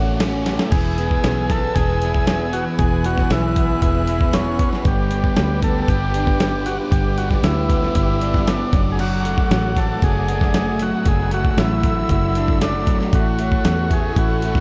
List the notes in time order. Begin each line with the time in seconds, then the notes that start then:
Already playing: A1 A3 C#4 F#4 F#5 D6
0.20 C#4, snare, ride
0.46 A3, snare, ride
0.59 snare
0.71 E1 E3 G#4 B4 G#5 E6, kick, closed hi-hat, crash
0.98 B3, closed hi-hat
1.11 kick
1.24 B1 E3, snare, closed hi-hat
1.50 B3 A4, kick, snare, closed hi-hat
1.75 E1 G#4, kick, closed hi-hat
2.02 E4, closed hi-hat
2.14 kick
2.27 B3, snare, closed hi-hat
2.53 E3 F#4, closed hi-hat
2.78 E1 E3 G#4 F#6, kick, closed hi-hat
3.04 B3 F#4, closed hi-hat
3.18 kick, snare
3.30 B1 E3 E4, snare, closed hi-hat
3.56 B3, kick, closed hi-hat
3.82 E1 E4 G#4, kick, closed hi-hat
4.07 E4, closed hi-hat
4.21 kick
4.33 B3 C#4, snare, closed hi-hat
4.59 E3, kick, closed hi-hat
4.73 snare
4.85 G1 G3 G4 G5 D6, kick, closed hi-hat
5.11 B3, closed hi-hat
5.24 kick
5.36 D2 G3, snare, closed hi-hat
5.62 B3 A4, kick, closed hi-hat
5.82 A4
5.88 G1 G4, kick, closed hi-hat
6.14 D4, closed hi-hat
6.27 kick
6.40 B3, snare, closed hi-hat
6.66 G3 F#4, closed hi-hat
6.91 G1 G3 G4, kick, closed hi-hat
7.18 B3 F#4, closed hi-hat
7.31 kick, snare
7.43 D2 G3 E4, snare, closed hi-hat
7.70 B3, kick, closed hi-hat
7.83 snare
7.95 G1 E4 G4, kick, closed hi-hat
8.21 D4, closed hi-hat
8.34 kick, snare
8.47 B3 D4, snare, closed hi-hat
8.73 F#1 F#3 A3 F#5 D6, kick, closed hi-hat
8.92 G#4
8.99 F#3 F#4, crash
9.25 A3, closed hi-hat
9.38 kick
9.51 A1 F#3, snare, closed hi-hat
9.77 A3 A4, kick, snare, closed hi-hat
10.02 F#1 F#4 G#4, kick, closed hi-hat
10.28 D4, closed hi-hat
10.41 kick, snare
10.54 A3, snare, closed hi-hat
10.79 F#3 F#4 E6, closed hi-hat
11.05 F#1 F#3 G#4, kick, closed hi-hat
11.31 A3 F#4, closed hi-hat
11.45 kick
11.51 F#4
11.57 A1 F#3 E4, snare, closed hi-hat
11.83 A3, kick, closed hi-hat
12.09 F#1 E4 F#4, kick, closed hi-hat
12.35 D4, closed hi-hat
12.48 kick
12.61 A3 D4, snare, closed hi-hat
12.87 F#3, kick, closed hi-hat
13.00 snare
13.13 A1 A2 F#4 A4 E5 C#6, kick, closed hi-hat
13.39 A3, closed hi-hat
13.52 kick
13.65 E2 E3, snare, closed hi-hat
13.91 A3 G#4, kick, closed hi-hat
14.16 A1 E4 F#4, kick, closed hi-hat
14.42 C#4, closed hi-hat
14.55 kick, snare